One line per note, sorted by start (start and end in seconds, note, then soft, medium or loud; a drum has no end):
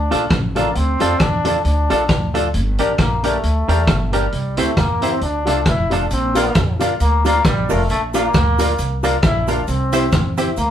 0.00 0.32 D4 medium
0.10 0.28 A#1 loud
0.10 0.23 A3 medium
0.10 0.23 D4 medium
0.10 0.24 D4 medium
0.10 0.23 F4 medium
0.10 0.24 F4 loud
0.10 0.24 A4 medium
0.10 0.24 A4 loud
0.10 0.24 D5 medium
0.10 closed hi-hat medium
0.30 0.69 A1 loud
0.30 kick loud
0.30 cross-stick loud
0.30 closed hi-hat medium
0.55 0.68 A3 medium
0.55 0.78 A#3 medium
0.55 0.68 D4 medium
0.55 0.68 F4 medium
0.55 0.69 F4 medium
0.55 0.68 A4 medium
0.55 0.69 A4 medium
0.55 0.69 D5 loud
0.55 closed hi-hat medium
0.75 0.97 D2 loud
0.75 1.22 C4 loud
0.75 closed hi-hat medium
1.00 1.17 F2 medium
1.00 1.13 A3 medium
1.00 1.13 D4 loud
1.00 1.13 F4 medium
1.00 1.13 F4 loud
1.00 1.13 A4 medium
1.00 1.13 A4 loud
1.00 1.13 D5 loud
1.00 closed hi-hat loud
1.20 1.58 E2 medium
1.20 1.64 D4 loud
1.20 kick loud
1.20 cross-stick loud
1.20 closed hi-hat medium
1.44 1.57 A3 medium
1.44 1.57 D4 medium
1.44 1.58 D4 medium
1.44 1.57 F4 medium
1.44 1.58 F4 medium
1.44 1.57 A4 medium
1.44 1.58 A4 medium
1.44 1.58 D5 loud
1.44 closed hi-hat loud
1.65 1.86 D2 medium
1.65 2.31 D4 loud
1.65 closed hi-hat medium
1.90 2.07 A#1 medium
1.90 2.02 A3 medium
1.90 2.02 D4 medium
1.90 2.02 F4 medium
1.90 2.02 A4 medium
1.90 2.03 A4 loud
1.90 2.03 D5 loud
1.90 closed hi-hat medium
2.09 2.56 D2 medium
2.09 kick loud
2.09 cross-stick loud
2.09 closed hi-hat medium
2.34 2.47 A3 medium
2.34 2.47 D4 medium
2.34 2.47 F4 medium
2.34 2.47 A4 medium
2.34 2.47 D5 loud
2.34 closed hi-hat medium
2.54 2.75 G1 loud
2.54 closed hi-hat medium
2.78 2.91 A#3 medium
2.78 2.91 D4 loud
2.78 2.91 D4 medium
2.78 2.91 G4 medium
2.78 2.92 G4 loud
2.78 2.92 A#4 medium
2.78 2.92 A#4 loud
2.78 2.92 D5 loud
2.78 closed hi-hat loud
2.98 3.37 A#1 medium
2.98 3.27 A#3 medium
2.98 kick loud
2.98 cross-stick loud
2.98 closed hi-hat medium
3.23 4.05 A3 medium
3.23 3.36 A#3 medium
3.23 3.36 D4 medium
3.23 3.36 G4 medium
3.23 3.36 A#4 medium
3.23 3.36 D5 medium
3.23 closed hi-hat loud
3.43 3.65 D2 medium
3.43 closed hi-hat medium
3.68 3.85 E2 medium
3.68 3.81 A#3 medium
3.68 3.80 D4 medium
3.68 3.81 D4 loud
3.68 3.81 G4 medium
3.68 3.81 A#4 medium
3.68 3.81 A#4 loud
3.68 3.81 D5 loud
3.68 closed hi-hat medium
3.87 4.26 G1 loud
3.87 3.93 A#4 soft
3.87 3.93 D5 soft
3.87 kick loud
3.87 cross-stick loud
3.87 closed hi-hat medium
4.05 4.16 A3 medium
4.12 4.60 G3 medium
4.12 4.25 A#3 medium
4.12 4.25 D4 medium
4.12 4.25 G4 medium
4.12 4.26 G4 medium
4.12 4.25 A#4 medium
4.12 4.26 A#4 medium
4.12 4.25 D5 loud
4.12 closed hi-hat medium
4.32 4.54 C2 medium
4.32 closed hi-hat medium
4.57 4.74 D2 medium
4.57 4.79 A3 medium
4.57 4.70 C4 medium
4.57 4.69 E4 medium
4.57 4.70 E4 medium
4.57 4.70 G4 medium
4.57 4.70 C5 medium
4.57 4.70 C5 loud
4.57 4.70 E5 loud
4.57 closed hi-hat loud
4.77 5.15 E2 medium
4.77 5.14 A#3 loud
4.77 kick loud
4.77 cross-stick loud
4.77 closed hi-hat medium
5.01 5.14 C4 medium
5.01 5.14 E4 medium
5.01 5.15 E4 medium
5.01 5.14 G4 medium
5.01 5.15 G4 medium
5.01 5.14 C5 medium
5.01 5.15 C5 medium
5.01 5.14 E5 loud
5.01 closed hi-hat loud
5.12 5.22 C4 medium
5.21 5.47 D2 medium
5.21 5.64 D4 loud
5.21 closed hi-hat medium
5.45 5.63 C2 medium
5.45 5.59 A3 medium
5.45 5.59 D4 medium
5.45 5.58 F4 medium
5.45 5.60 F4 medium
5.45 5.59 A4 medium
5.45 5.60 A4 medium
5.45 5.59 D5 medium
5.45 5.59 F5 medium
5.45 closed hi-hat loud
5.65 6.04 F1 medium
5.65 5.95 E4 loud
5.65 5.71 D5 soft
5.65 5.71 F5 soft
5.65 kick loud
5.65 cross-stick loud
5.65 closed hi-hat medium
5.90 6.04 A3 medium
5.90 6.04 D4 medium
5.90 6.12 D4 medium
5.90 6.03 F4 medium
5.90 6.04 F4 medium
5.90 6.03 A4 medium
5.90 6.04 A4 medium
5.90 6.03 D5 medium
5.90 6.04 F5 medium
5.90 closed hi-hat medium
6.11 6.49 A#1 loud
6.11 6.78 C4 medium
6.11 closed hi-hat medium
6.11 cabasa soft
6.35 6.48 A#3 medium
6.35 6.48 D4 medium
6.35 6.48 F4 loud
6.35 6.48 F4 medium
6.35 6.48 A#4 loud
6.35 6.49 A#4 medium
6.35 6.48 D5 medium
6.35 6.48 F5 loud
6.35 closed hi-hat loud
6.35 cabasa medium
6.55 6.93 F2 medium
6.55 kick loud
6.55 cross-stick loud
6.55 closed hi-hat medium
6.55 cabasa soft
6.79 6.93 A#3 medium
6.79 6.93 D4 medium
6.79 6.92 F4 medium
6.79 6.93 F4 medium
6.79 6.93 A#4 medium
6.79 6.93 D5 medium
6.79 6.93 F5 medium
6.79 closed hi-hat loud
6.79 cabasa medium
7.00 7.38 D2 medium
7.00 7.24 A#3 loud
7.00 closed hi-hat medium
7.00 cabasa medium
7.25 7.37 A#3 medium
7.25 7.44 A#3 loud
7.25 7.38 D4 medium
7.25 7.37 F4 loud
7.25 7.38 F4 medium
7.25 7.37 A#4 medium
7.25 7.38 A#4 medium
7.25 7.37 D5 medium
7.25 7.38 F5 loud
7.25 closed hi-hat loud
7.25 cabasa medium
7.45 7.66 A#1 loud
7.45 7.73 G3 loud
7.45 kick loud
7.45 cross-stick loud
7.45 closed hi-hat medium
7.45 cabasa medium
7.69 7.87 F1 medium
7.69 7.90 A3 medium
7.69 7.82 A#3 medium
7.69 7.82 D4 medium
7.69 7.82 F4 medium
7.69 7.82 A#4 medium
7.69 7.83 A#4 loud
7.69 7.82 D5 medium
7.69 7.82 F5 medium
7.69 open hi-hat medium
7.69 cabasa medium
7.89 8.28 A#1 loud
7.89 8.02 A3 loud
7.89 closed hi-hat medium
7.89 cabasa soft
8.14 8.27 A#3 medium
8.14 9.01 A#3 loud
8.14 8.27 D4 loud
8.14 8.26 F4 loud
8.14 8.27 F4 loud
8.14 8.27 A#4 medium
8.14 8.27 A#4 loud
8.14 8.27 D5 medium
8.14 8.27 F5 loud
8.14 closed hi-hat loud
8.14 cabasa medium
8.34 8.72 D2 medium
8.34 kick loud
8.34 cross-stick loud
8.34 closed hi-hat medium
8.34 cabasa medium
8.58 8.71 A#3 medium
8.58 8.71 D4 medium
8.58 8.71 F4 medium
8.58 8.72 F4 medium
8.58 8.71 A#4 medium
8.58 8.72 A#4 medium
8.58 8.72 D5 medium
8.58 8.72 F5 medium
8.58 closed hi-hat loud
8.58 cabasa medium
8.78 9.17 C2 loud
8.78 closed hi-hat medium
8.78 cabasa medium
9.03 9.16 A#3 medium
9.03 9.16 D4 medium
9.03 9.16 F4 medium
9.03 9.16 A#4 medium
9.03 9.16 A#4 loud
9.03 9.16 D5 medium
9.03 9.16 F5 loud
9.03 closed hi-hat loud
9.03 cabasa medium
9.23 9.61 A#1 loud
9.23 9.47 E4 loud
9.23 kick loud
9.23 cross-stick loud
9.23 closed hi-hat medium
9.23 cabasa medium
9.47 9.60 A#3 medium
9.47 9.61 D4 medium
9.47 9.67 D4 medium
9.47 9.60 F4 medium
9.47 9.61 F4 medium
9.47 9.60 A#4 medium
9.47 9.61 A#4 medium
9.47 9.60 D5 medium
9.47 9.61 F5 loud
9.47 closed hi-hat medium
9.47 cabasa medium
9.68 10.06 C2 loud
9.68 10.34 C4 medium
9.68 closed hi-hat medium
9.68 cabasa soft
9.92 10.05 C4 medium
9.92 10.05 E4 loud
9.92 10.05 E4 medium
9.92 10.05 G4 loud
9.92 10.05 C5 medium
9.92 10.05 C5 loud
9.92 10.06 E5 loud
9.92 closed hi-hat loud
9.92 cabasa medium
10.12 10.50 E2 medium
10.12 kick loud
10.12 cross-stick loud
10.12 closed hi-hat medium
10.12 cabasa medium
10.37 10.50 C4 medium
10.37 10.50 E4 medium
10.37 10.50 G4 medium
10.37 10.50 C5 medium
10.37 10.50 E5 medium
10.37 closed hi-hat loud
10.37 cabasa medium
10.57 10.71 D2 medium
10.57 10.68 A#3 loud
10.57 closed hi-hat medium
10.57 cabasa medium